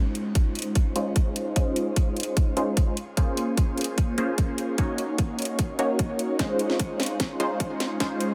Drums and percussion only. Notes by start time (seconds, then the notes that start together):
0.15 closed hi-hat
0.35 kick, closed hi-hat
0.55 closed hi-hat
0.59 closed hi-hat
0.62 closed hi-hat
0.75 kick, closed hi-hat
0.96 closed hi-hat
1.16 kick, closed hi-hat
1.36 closed hi-hat
1.56 kick, closed hi-hat
1.76 closed hi-hat
1.96 kick, closed hi-hat
2.17 closed hi-hat
2.20 closed hi-hat
2.23 closed hi-hat
2.37 kick, closed hi-hat
2.57 closed hi-hat
2.77 kick, closed hi-hat
2.97 closed hi-hat
3.17 kick, closed hi-hat
3.37 closed hi-hat
3.57 kick, closed hi-hat
3.78 closed hi-hat
3.81 closed hi-hat
3.84 closed hi-hat
3.98 kick, closed hi-hat
4.18 closed hi-hat
4.38 kick, closed hi-hat
4.58 closed hi-hat
4.78 kick, closed hi-hat
4.98 closed hi-hat
5.18 kick, closed hi-hat
5.39 closed hi-hat
5.42 closed hi-hat
5.45 closed hi-hat
5.59 kick, closed hi-hat
5.79 closed hi-hat
5.99 kick, closed hi-hat
6.19 closed hi-hat
6.39 kick, snare, closed hi-hat
6.59 closed hi-hat
6.70 snare
6.79 kick, closed hi-hat
7.00 snare, closed hi-hat
7.03 closed hi-hat
7.06 closed hi-hat
7.20 kick, snare, closed hi-hat
7.40 closed hi-hat
7.60 kick, closed hi-hat
7.80 snare, closed hi-hat
8.00 kick, snare, closed hi-hat
8.20 closed hi-hat